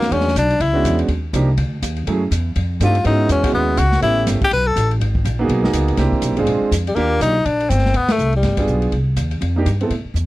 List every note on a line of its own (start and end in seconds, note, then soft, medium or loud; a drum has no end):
0.00 0.10 D#2 medium
0.00 0.14 A#3 medium
0.00 0.10 D#4 medium
0.00 0.10 F#4 medium
0.00 snare soft
0.00 ride soft
0.11 0.35 E2 medium
0.11 0.24 G#3 soft
0.11 0.25 B3 soft
0.11 0.25 C#4 soft
0.11 0.36 C#4 medium
0.11 0.25 D4 soft
0.11 0.25 F#4 medium
0.11 kick soft
0.11 ride medium
0.20 snare soft
0.28 snare soft
0.36 0.59 B1 medium
0.36 0.63 D4 medium
0.36 kick soft
0.36 hi-hat pedal medium
0.36 ride medium
0.50 ride soft
0.60 0.84 C#2 medium
0.60 1.00 E4 medium
0.60 kick soft
0.60 ride medium
0.73 1.06 G#3 medium
0.73 1.07 B3 medium
0.73 1.07 C#4 medium
0.73 1.07 D4 medium
0.73 1.07 F#4 medium
0.84 1.07 E2 medium
0.84 kick soft
0.84 hi-hat pedal soft
0.84 ride medium
0.99 ride soft
1.08 1.32 D#2 medium
1.08 kick soft
1.08 ride soft
1.33 1.57 C2 medium
1.33 1.47 F3 medium
1.33 1.47 A#3 medium
1.33 1.47 D4 medium
1.33 1.47 D#4 medium
1.33 1.48 G4 medium
1.33 kick soft
1.33 hi-hat pedal soft
1.33 ride medium
1.57 1.82 D2 medium
1.57 kick soft
1.57 ride medium
1.82 2.06 D#2 medium
1.82 kick soft
1.82 hi-hat pedal medium
1.82 ride medium
1.96 ride soft
2.07 2.30 F#2 medium
2.07 2.20 F#3 medium
2.07 2.20 A3 medium
2.07 2.21 C#4 medium
2.07 2.21 E4 medium
2.07 2.21 G#4 medium
2.07 kick soft
2.07 ride medium
2.31 2.55 E2 medium
2.31 kick soft
2.31 hi-hat pedal medium
2.31 ride medium
2.56 2.79 F2 medium
2.56 kick soft
2.56 ride medium
2.80 3.04 G2 medium
2.80 2.94 A3 medium
2.80 2.94 C4 medium
2.80 2.94 D4 medium
2.80 2.94 D#4 medium
2.80 3.05 F4 medium
2.80 2.95 G4 medium
2.80 kick soft
2.80 hi-hat pedal soft
2.80 ride medium
2.95 ride soft
3.04 3.28 G#2 medium
3.04 3.41 G#3 medium
3.04 3.41 B3 medium
3.04 3.41 C#4 medium
3.04 3.29 D#4 medium
3.04 3.41 E4 medium
3.04 3.41 F#4 medium
3.04 kick soft
3.04 ride medium
3.29 3.53 E2 medium
3.29 3.53 C#4 medium
3.29 kick soft
3.29 hi-hat pedal medium
3.29 ride medium
3.43 3.76 G#3 medium
3.43 3.76 B3 medium
3.43 3.76 C#4 medium
3.43 3.76 E4 medium
3.43 3.77 F#4 medium
3.43 kick soft
3.43 ride medium
3.54 3.77 D#2 medium
3.54 3.80 B3 medium
3.54 kick soft
3.77 4.02 C#2 medium
3.77 4.02 F#4 medium
3.77 kick soft
3.77 hi-hat pedal medium
3.77 ride medium
3.92 snare soft
4.01 4.26 A1 medium
4.01 4.38 A3 medium
4.01 4.38 B3 soft
4.01 4.38 C#4 medium
4.01 4.25 E4 medium
4.01 4.39 E4 medium
4.01 4.39 G4 medium
4.01 kick soft
4.01 ride medium
4.26 4.40 G1 medium
4.26 kick soft
4.26 snare soft
4.26 hi-hat pedal medium
4.26 ride medium
4.41 4.48 G4 medium
4.41 muted upright bass stroke soft
4.41 kick medium
4.41 ride soft
4.51 4.75 B1 medium
4.51 4.68 B4 medium
4.51 kick soft
4.51 ride medium
4.67 4.91 A4 medium
4.76 5.00 A1 medium
4.76 kick soft
4.76 hi-hat pedal medium
4.76 ride medium
4.91 ride soft
5.00 5.24 G#1 medium
5.00 kick soft
5.00 ride medium
5.15 kick medium
5.25 5.48 A#1 medium
5.25 kick soft
5.25 hi-hat pedal medium
5.25 ride medium
5.39 5.61 A#3 medium
5.39 5.61 B3 medium
5.39 5.62 D#4 medium
5.39 5.63 F#4 medium
5.39 5.63 G#4 medium
5.49 5.73 B1 medium
5.49 kick soft
5.49 ride medium
5.63 5.96 A#3 medium
5.63 5.96 B3 medium
5.63 5.96 D#4 medium
5.63 5.97 F#4 medium
5.63 5.97 G#4 medium
5.63 snare soft
5.73 5.97 C#2 medium
5.73 kick soft
5.73 hi-hat pedal medium
5.73 ride medium
5.88 ride soft
5.97 6.11 C2 medium
5.97 6.34 A#3 medium
5.97 6.34 C4 medium
5.97 6.35 D4 medium
5.97 6.35 E4 medium
5.97 6.35 G4 medium
5.97 kick soft
5.97 snare soft
5.97 ride medium
6.12 kick soft
6.22 6.31 B1 medium
6.22 kick soft
6.22 hi-hat pedal medium
6.22 ride medium
6.31 6.38 A#1 medium
6.37 6.46 G1 medium
6.37 6.70 G#3 medium
6.37 6.70 C4 medium
6.37 6.70 D4 medium
6.37 6.70 F4 medium
6.37 6.70 G#4 medium
6.37 ride soft
6.46 6.60 A#1 medium
6.46 kick soft
6.46 ride medium
6.61 muted upright bass stroke soft
6.71 6.95 F2 medium
6.71 kick soft
6.71 hi-hat pedal medium
6.71 ride medium
6.87 6.97 G3 medium
6.87 ride soft
6.95 7.20 D#2 medium
6.95 7.32 A#3 medium
6.95 7.20 A#3 medium
6.95 7.32 D4 medium
6.95 7.33 F4 medium
6.95 7.33 G4 medium
6.95 kick soft
6.95 ride soft
7.21 7.44 B1 medium
7.21 7.47 D#4 medium
7.21 kick soft
7.21 hi-hat pedal soft
7.21 ride medium
7.45 7.69 A#1 medium
7.45 7.71 D4 medium
7.45 kick soft
7.45 ride medium
7.60 ride soft
7.69 7.93 G1 medium
7.69 7.98 C4 medium
7.69 kick soft
7.69 hi-hat pedal medium
7.69 ride medium
7.78 snare soft
7.86 snare soft
7.94 8.18 D2 medium
7.94 8.13 B3 medium
7.94 kick soft
7.94 ride medium
8.08 8.35 A3 medium
8.08 snare medium
8.08 ride medium
8.18 8.42 C2 medium
8.18 hi-hat pedal medium
8.33 8.80 G3 medium
8.33 ride soft
8.42 8.67 G1 medium
8.42 kick soft
8.42 snare soft
8.42 ride medium
8.57 8.90 B3 medium
8.57 8.91 D4 medium
8.57 8.91 F4 soft
8.57 8.91 G#4 medium
8.57 kick soft
8.57 ride medium
8.67 8.91 B1 medium
8.67 kick soft
8.67 hi-hat pedal medium
8.82 ride soft
8.92 9.16 C2 medium
8.92 kick soft
8.92 ride soft
9.16 9.40 D#2 medium
9.16 kick soft
9.16 hi-hat pedal medium
9.16 ride medium
9.31 ride soft
9.41 9.65 F2 medium
9.41 kick soft
9.41 ride medium
9.56 9.65 A#3 medium
9.56 9.66 D4 medium
9.56 9.65 D#4 medium
9.56 9.66 G4 medium
9.65 9.89 G2 medium
9.65 kick soft
9.65 hi-hat pedal soft
9.65 ride medium
9.80 9.89 B3 medium
9.80 9.90 C4 medium
9.80 9.90 E4 medium
9.80 9.90 A4 medium
9.80 ride soft
9.90 10.04 A2 medium
9.90 kick soft
9.90 ride medium
10.05 muted upright bass stroke soft
10.14 10.26 E2 medium
10.14 hi-hat pedal medium